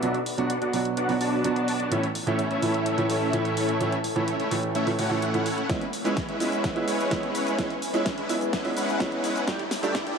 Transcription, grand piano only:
0.02 0.14 B2 medium
0.02 0.14 F#3 medium
0.02 0.14 B3 medium
0.02 0.14 D4 medium
0.02 0.14 F#4 loud
0.37 0.49 B2 loud
0.37 0.49 F#3 medium
0.37 0.49 B3 medium
0.37 0.49 D4 medium
0.37 0.50 F#4 loud
0.73 1.06 B2 medium
0.73 1.06 F#3 medium
0.73 1.06 B3 medium
0.73 1.06 D4 medium
0.73 1.06 F#4 medium
1.08 1.41 B2 medium
1.08 1.41 F#3 medium
1.08 1.42 B3 medium
1.08 1.42 D4 medium
1.08 1.42 F#4 loud
1.44 1.88 B2 loud
1.44 1.89 F#3 medium
1.44 1.89 B3 medium
1.44 1.89 D4 medium
1.44 1.89 F#4 loud
1.91 2.03 A2 medium
1.91 2.03 E3 medium
1.91 2.03 A3 medium
1.91 2.03 C#4 medium
1.91 2.03 E4 loud
2.26 2.38 A2 loud
2.26 2.38 E3 medium
2.26 2.38 A3 medium
2.26 2.38 C#4 medium
2.26 2.39 E4 loud
2.62 2.95 A2 medium
2.62 2.95 E3 medium
2.62 2.95 A3 medium
2.62 2.95 C#4 medium
2.62 2.95 E4 loud
2.97 3.30 A2 medium
2.97 3.30 E3 medium
2.97 3.31 A3 medium
2.97 3.31 C#4 medium
2.97 3.31 E4 loud
3.33 3.77 A2 loud
3.33 3.78 E3 medium
3.33 3.78 A3 medium
3.33 3.78 C#4 medium
3.33 3.78 E4 loud
3.80 3.91 A2 medium
3.80 3.92 E3 medium
3.80 3.92 A3 medium
3.80 3.92 C#4 medium
3.80 3.92 E4 loud
4.15 4.27 A2 loud
4.15 4.27 E3 medium
4.15 4.27 A3 medium
4.15 4.27 C#4 medium
4.15 4.28 E4 loud
4.51 4.84 A2 medium
4.51 4.84 E3 medium
4.51 4.84 A3 medium
4.51 4.84 C#4 medium
4.51 4.84 E4 medium
4.86 4.96 A2 medium
4.86 4.96 E3 medium
4.86 4.96 A3 medium
4.86 4.96 C#4 medium
4.86 4.97 E4 loud
4.98 5.08 A2 medium
4.98 5.09 E3 medium
4.98 5.09 A3 medium
4.98 5.09 C#4 medium
4.98 5.09 F#4 medium
5.10 5.31 A2 medium
5.10 5.31 E3 medium
5.10 5.31 A3 medium
5.10 5.31 C#4 medium
5.10 5.32 E4 medium
5.33 5.45 A2 medium
5.33 5.45 E3 medium
5.33 5.45 A3 medium
5.33 5.46 C#4 medium
5.33 5.46 E4 medium
5.69 5.80 G#3 medium
5.69 5.81 B3 medium
5.69 5.81 C#4 medium
5.69 5.81 E4 loud
6.04 6.16 G#3 loud
6.04 6.16 B3 medium
6.04 6.16 C#4 medium
6.04 6.16 E4 loud
6.40 6.73 G#3 medium
6.40 6.73 B3 medium
6.40 6.73 C#4 medium
6.40 6.73 E4 medium
6.75 7.08 G#3 medium
6.75 7.08 B3 medium
6.75 7.09 C#4 medium
6.75 7.09 E4 loud
7.11 7.55 G#3 loud
7.11 7.56 B3 medium
7.11 7.56 C#4 medium
7.11 7.56 E4 loud
7.58 7.69 G#3 medium
7.58 7.70 B3 medium
7.58 7.70 C#4 medium
7.58 7.70 E4 loud
7.93 8.05 G#3 loud
7.93 8.05 B3 medium
7.93 8.05 C#4 medium
7.93 8.05 E4 loud
8.29 8.62 G#3 medium
8.29 8.62 B3 medium
8.29 8.62 C#4 medium
8.29 8.62 E4 medium
8.64 8.97 G#3 medium
8.64 8.97 B3 medium
8.64 8.98 C#4 medium
8.64 8.98 E4 loud
9.00 9.44 G#3 loud
9.00 9.45 B3 medium
9.00 9.45 C#4 medium
9.00 9.45 E4 loud
9.47 9.58 G2 medium
9.47 9.59 G3 medium
9.47 9.59 A3 medium
9.47 9.59 D4 medium
9.47 9.59 G4 loud
9.82 9.94 G2 loud
9.82 9.94 G3 medium
9.82 9.94 A3 medium
9.82 9.94 D4 medium
9.82 9.94 G4 loud

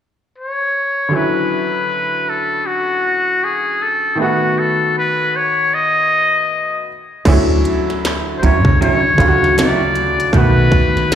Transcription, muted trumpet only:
0.38 1.17 C#5 medium
1.15 2.31 B4 medium
2.29 2.68 A4 medium
2.66 3.46 F#4 medium
3.44 3.84 G#4 medium
3.82 4.19 A4 medium
4.21 4.60 F#4 medium
4.59 4.96 A4 medium
4.98 5.37 B4 medium
5.36 5.76 C#5 medium
5.74 6.88 D#5 medium
8.38 8.46 C5 medium
8.44 8.81 C#5 medium
8.82 9.54 C#5 loud
9.59 10.31 D5 medium
10.36 11.15 B4 medium

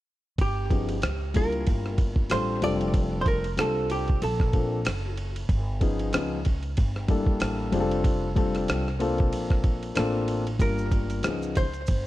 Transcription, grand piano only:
0.70 0.94 F3 medium
0.70 0.94 B3 medium
0.70 0.94 C#4 medium
0.70 0.95 D#4 medium
0.70 0.95 G#4 medium
1.34 2.24 G3 medium
1.34 2.25 A#3 soft
1.34 2.25 D4 medium
1.34 2.25 E4 medium
1.34 2.26 F4 medium
2.30 2.60 G3 medium
2.30 2.60 C4 medium
2.30 2.61 D4 medium
2.30 2.61 F4 medium
2.30 2.62 A4 medium
2.62 3.40 G3 medium
2.62 3.40 C4 medium
2.62 3.41 D4 medium
2.62 3.41 F4 medium
2.62 3.41 A4 medium
3.57 4.21 G3 medium
3.57 4.21 C4 medium
3.57 4.22 D4 medium
3.57 4.22 F4 medium
3.57 4.22 A4 medium
4.53 4.77 A#3 medium
4.53 4.77 C4 medium
4.53 4.77 D4 medium
4.53 4.78 F4 medium
4.53 4.78 A4 medium
5.80 6.11 F3 medium
5.80 6.12 B3 medium
5.80 6.12 C#4 medium
5.80 6.12 D#4 medium
5.80 6.13 G#4 medium
6.12 6.37 F3 medium
6.12 6.37 B3 medium
6.12 6.37 C#4 medium
6.12 6.37 D#4 medium
6.12 6.38 G#4 medium
7.08 7.70 G3 medium
7.08 7.73 A#3 medium
7.08 7.71 D4 medium
7.08 7.73 E4 medium
7.08 7.73 A4 medium
7.72 8.25 G3 medium
7.72 8.25 C4 medium
7.72 8.26 D4 medium
7.72 8.26 F4 medium
7.72 7.81 G#4 medium
7.80 8.30 A4 medium
8.35 8.83 G3 medium
8.35 8.83 C4 medium
8.35 8.83 D4 medium
8.35 8.83 F4 medium
8.35 8.84 A4 medium
8.99 9.90 A#3 medium
8.99 9.90 C4 medium
8.99 9.91 D4 medium
8.99 9.91 F4 medium
8.99 9.91 A4 medium
9.95 10.42 A#3 medium
9.95 10.42 C4 medium
9.95 10.43 D4 medium
9.95 10.43 F4 medium
9.95 10.43 A4 medium
10.59 11.23 G3 medium
10.59 11.24 A#3 medium
10.59 11.24 D4 medium
10.59 11.24 F4 medium
10.59 11.24 A#4 medium
11.23 11.63 F3 medium
11.23 11.63 B3 medium
11.23 11.63 C#4 medium
11.23 11.63 D#4 medium
11.23 11.64 G#4 medium

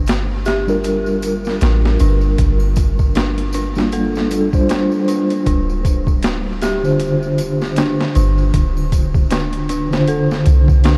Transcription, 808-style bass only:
0.00 1.59 G1 medium
1.62 1.97 A1 medium
2.01 2.35 G1 loud
2.38 4.88 G1 medium
5.46 7.95 D1 medium
8.16 8.51 G1 medium
8.54 10.43 D1 loud
10.47 10.98 C2 loud

